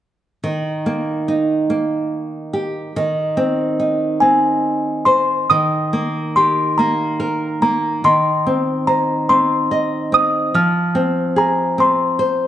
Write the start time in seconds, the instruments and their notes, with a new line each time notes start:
0.44 nylon-string guitar D#3
0.86 nylon-string guitar A#3
1.28 nylon-string guitar D#4
1.70 nylon-string guitar A#3
2.53 nylon-string guitar G4
2.96 nylon-string guitar D#3
3.37 nylon-string guitar C4
3.80 nylon-string guitar D#4
4.20 nylon-string guitar C4, music box G#5
5.05 nylon-string guitar C5, music box C6
5.50 nylon-string guitar D#3, music box D#6
5.93 nylon-string guitar A#3
6.36 nylon-string guitar G4, music box C6
6.78 nylon-string guitar A#3, music box A#5
7.20 nylon-string guitar A#4
7.62 nylon-string guitar A#3, music box A#5
8.04 nylon-string guitar D#3, music box C6
8.47 nylon-string guitar C4
8.87 nylon-string guitar C5, music box A#5
9.29 nylon-string guitar C4, music box C6
9.71 nylon-string guitar D#5
10.12 nylon-string guitar C4, music box D#6
10.54 nylon-string guitar F3, music box F6
10.95 nylon-string guitar C4
11.36 nylon-string guitar G#4, music box A#5
11.78 nylon-string guitar C4, music box C6
12.19 nylon-string guitar C5